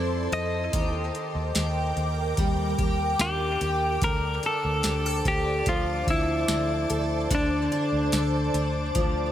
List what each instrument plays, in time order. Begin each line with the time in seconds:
Already playing: fingered electric bass F2, twelve-string acoustic guitar F3 C4 E4 A4, ambient pad A4 C5 A5 C6, clean electric guitar D5
0.32 fingered electric bass F2, twelve-string acoustic guitar A4, clean electric guitar D#5, closed hi-hat
0.73 fingered electric bass D#2, twelve-string acoustic guitar D#3 G4, ambient pad A#4 G5 D6, kick, closed hi-hat
1.15 closed hi-hat
1.35 fingered electric bass D#2
1.55 fingered electric bass D#2, twelve-string acoustic guitar G4, snare, closed hi-hat, tambourine
1.97 fingered electric bass D#2, closed hi-hat
2.37 fingered electric bass D#2, twelve-string acoustic guitar G3, kick, closed hi-hat
2.78 fingered electric bass D#2, twelve-string acoustic guitar G4, kick, closed hi-hat
3.19 fingered electric bass D#2, twelve-string acoustic guitar D4, clean electric guitar G4, snare, closed hi-hat, tambourine
3.61 fingered electric bass D#2, twelve-string acoustic guitar G4, closed hi-hat
4.02 fingered electric bass D2, twelve-string acoustic guitar D3, clean electric guitar A#4, ambient pad C5 D5 A5, kick, closed hi-hat
4.43 twelve-string acoustic guitar D4, clean electric guitar A4, closed hi-hat
4.65 fingered electric bass D2
4.83 fingered electric bass D2, twelve-string acoustic guitar G4, snare, closed hi-hat, tambourine
5.06 twelve-string acoustic guitar A4
5.25 fingered electric bass D2, twelve-string acoustic guitar D4, clean electric guitar G4, kick, closed hi-hat
5.66 fingered electric bass D2, twelve-string acoustic guitar F3, clean electric guitar F4, kick, closed hi-hat
6.07 fingered electric bass D2, clean electric guitar E4, twelve-string acoustic guitar A4, kick, closed hi-hat
6.48 fingered electric bass D2, twelve-string acoustic guitar D4, snare, closed hi-hat, tambourine
6.90 fingered electric bass D2, twelve-string acoustic guitar A4, closed hi-hat
7.30 fingered electric bass D2, twelve-string acoustic guitar D3 A4, ambient pad D6, kick, closed hi-hat
7.35 clean electric guitar D4
7.72 twelve-string acoustic guitar D4, closed hi-hat
7.93 fingered electric bass D2
8.12 fingered electric bass D2, twelve-string acoustic guitar A4, snare, closed hi-hat, tambourine
8.54 fingered electric bass D2, twelve-string acoustic guitar D4, closed hi-hat
8.95 fingered electric bass D2, twelve-string acoustic guitar F3, kick, closed hi-hat